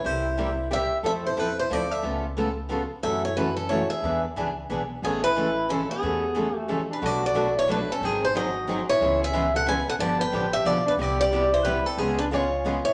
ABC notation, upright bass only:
X:1
M:3/4
L:1/8
Q:"Swing" 1/4=181
K:C#phr
V:1 name="Upright bass" clef=bass
=C,,6 | =F,,2 E,,2 D,,2 | C,,6 | F,,6 |
E,,2 C,,2 B,,,2 | A,,,6 | E,,6 | B,,,6 |
G,,,6 | C,,6 | =G,,,2 A,,,2 B,,,2 | =C,,6 |
C,,6 |]